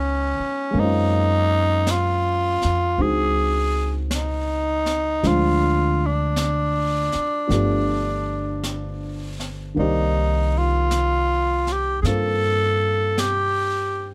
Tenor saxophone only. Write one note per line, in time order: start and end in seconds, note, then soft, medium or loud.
0.00 0.81 C#4 medium
0.79 1.93 D#4 medium
1.91 3.03 F4 medium
3.01 3.96 G#4 medium
4.15 5.29 D#4 medium
5.27 6.08 F4 medium
6.06 9.45 D4 medium
9.79 10.59 D#4 medium
10.58 11.74 F4 medium
11.72 12.01 G4 medium
12.02 12.08 G#4 soft
12.06 13.21 A4 medium
13.20 14.14 G4 medium